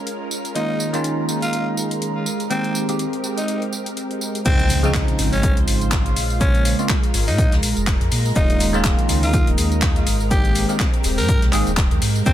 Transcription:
Already playing: G#3 C#4 F4 A#4 F5 A#5
0.07 closed hi-hat, tambourine
0.31 tambourine
0.45 closed hi-hat, tambourine
0.55 D#3 G#3 A#3 C#4 D#4 F4, closed hi-hat, tambourine
0.74 D#5
0.80 G#3, tambourine
0.93 D#3 G#3 A#3 C#4 F4, closed hi-hat, tambourine
1.04 closed hi-hat, tambourine
1.29 tambourine
1.42 F4, closed hi-hat, tambourine
1.53 closed hi-hat, tambourine
1.77 tambourine
1.91 closed hi-hat, tambourine
2.02 closed hi-hat, tambourine
2.26 C4 G4 A#4, tambourine
2.40 closed hi-hat, tambourine
2.49 D#3 G#3 A#3 C4 G4 G5, closed hi-hat, tambourine
2.64 closed hi-hat
2.75 tambourine
2.88 D#3 G#3 A#3 C4 G4, closed hi-hat, tambourine
2.99 closed hi-hat, tambourine
3.13 closed hi-hat
3.24 tambourine
3.38 D#4, closed hi-hat, tambourine
3.48 closed hi-hat, tambourine
3.62 closed hi-hat
3.73 tambourine
3.86 closed hi-hat, tambourine
3.97 closed hi-hat, tambourine
4.11 closed hi-hat
4.21 tambourine
4.35 closed hi-hat, tambourine
4.45 C#2 C#3 F3 G#3 C4 D#4 F4 C5, kick, closed hi-hat, tambourine, crash, impact, shaker
4.59 closed hi-hat
4.69 open hi-hat, tambourine, shaker
4.83 C#3 F3 G#3 C4 D#4, closed hi-hat, tambourine
4.91 F5, kick, snare, clap, closed hi-hat, tambourine
4.95 shaker
5.08 C6, closed hi-hat
5.19 G#1, open hi-hat, tambourine, shaker
5.33 G#1 C#4, open hi-hat, tambourine
5.43 kick, closed hi-hat, tambourine, shaker
5.56 C#2, closed hi-hat
5.68 G#1, open hi-hat, tambourine, shaker
5.81 closed hi-hat, tambourine
5.91 kick, snare, clap, closed hi-hat, tambourine, shaker
6.06 closed hi-hat
6.16 A#1 G#3 A#4, open hi-hat, tambourine, shaker
6.30 tambourine
6.40 C#3 G#3 A#3 C#4 F4 C5 A#5, kick, closed hi-hat, tambourine, shaker
6.55 closed hi-hat
6.65 open hi-hat, tambourine, shaker
6.78 C#3 G#3 A#3 C4 F4, closed hi-hat, tambourine
6.89 kick, snare, clap, closed hi-hat, tambourine, shaker
7.03 closed hi-hat
7.14 G#1, open hi-hat, tambourine, shaker
7.28 A#2 D#4, snare, open hi-hat, tambourine
7.38 kick, closed hi-hat, tambourine, shaker
7.52 C#2, snare, closed hi-hat
7.63 A#1, open hi-hat, tambourine, shaker
7.77 F1, closed hi-hat, tambourine
7.87 kick, snare, clap, closed hi-hat, tambourine, shaker
8.01 F2, closed hi-hat
8.11 A#2, open hi-hat, tambourine
8.25 tambourine
8.35 D#1 D#3 G#3 A#3 C#4 D#4 F4, kick, closed hi-hat, tambourine, shaker
8.50 closed hi-hat
8.60 open hi-hat, tambourine, shaker
8.68 D#5
8.73 D#3 G#3 A#3 C#4 F4, closed hi-hat, tambourine
8.84 kick, snare, clap, closed hi-hat, tambourine, shaker
8.99 closed hi-hat
9.09 C#2, open hi-hat, tambourine, shaker
9.23 D#2 F4, open hi-hat, tambourine
9.33 kick, closed hi-hat, tambourine, shaker
9.47 D#1, closed hi-hat
9.58 D#2, open hi-hat, tambourine, shaker
9.72 closed hi-hat, tambourine
9.82 kick, snare, clap, closed hi-hat, tambourine, shaker
9.96 closed hi-hat
10.07 G#1 C4 G4, open hi-hat, tambourine, shaker
10.20 tambourine
10.31 D#3 G#3 A#3 C4 G4, kick, closed hi-hat, tambourine, shaker
10.45 G5, closed hi-hat
10.55 open hi-hat, tambourine, shaker
10.69 D#3 G#3 A#3 C4 G4, closed hi-hat, tambourine
10.79 kick, snare, clap, closed hi-hat, tambourine, shaker
10.94 closed hi-hat
11.04 D#1, open hi-hat, tambourine, shaker
11.18 G#2 A#4, snare, open hi-hat, tambourine
11.29 kick, closed hi-hat, tambourine, shaker
11.42 C2, snare, closed hi-hat
11.52 G#1 D#3 G#3 A#3 C4 G#4, clap, open hi-hat, tambourine, shaker
11.67 D#1, closed hi-hat, tambourine
11.77 kick, snare, clap, closed hi-hat, tambourine, shaker
11.91 D#2, closed hi-hat
12.02 G#2, open hi-hat, tambourine
12.16 closed hi-hat, tambourine
12.26 C#2 C#3 F3 G#3 C4 D#4 F4 C5, kick, closed hi-hat, tambourine, shaker

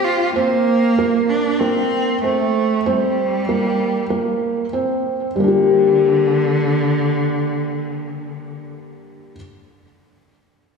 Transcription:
Already playing: C4
0.04 F4
0.36 A#3 C4
0.98 A#3
1.29 D4
1.60 A#3 C4
2.24 A3 C4
2.86 G3 C4
3.49 A#3
4.10 A#3
4.73 C4
5.35 D3 G3
5.40 A#3 D4
5.48 G4

